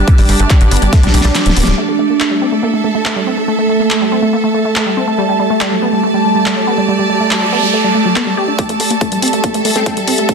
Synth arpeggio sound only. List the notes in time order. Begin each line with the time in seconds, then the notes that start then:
0.08 G3
0.18 G3
0.29 G3
0.40 A3
0.50 G3
0.61 F#3
0.71 B3
0.82 G3
0.93 A3
1.03 G3
1.14 G3
1.25 G3
1.35 G3
1.46 F#3
1.57 B3
1.67 G3
1.78 A3
1.88 A3
1.99 A3
2.10 A#3
2.20 A3
2.31 G3
2.42 C4
2.52 A3
2.63 A#3
2.74 A3
2.84 A3
2.95 A3
3.05 A3
3.16 G3
3.27 C4
3.37 A3
3.48 A3
3.59 A3
3.69 A3
3.80 A#3
3.91 A3
4.01 G3
4.12 C4
4.22 A3
4.33 A#3
4.44 A3
4.54 A3
4.65 A3
4.76 A3
4.86 G3
4.97 C4
5.08 A3
5.18 G3
5.29 G3
5.39 G3
5.50 A3
5.61 G3
5.71 F#3
5.82 B3
5.93 G3
6.03 A3
6.14 G3
6.25 G3
6.35 G3
6.46 G3
6.57 F#3
6.67 B3
6.78 G3
6.88 G3
6.99 G3
7.10 G3
7.20 A3
7.31 G3
7.42 F#3
7.52 B3
7.63 G3
7.74 A3
7.84 G3
7.95 A3
8.05 F#3
8.16 B3
8.27 G3
8.37 G4
8.48 D4
8.59 A3
8.69 A3
8.80 A3
8.91 A#3
9.01 A3
9.12 G3
9.22 C4
9.33 A3
9.44 A#3
9.54 A3
9.65 A3
9.76 A3
9.86 A3
9.97 G3
10.08 C4
10.18 A3
10.29 A3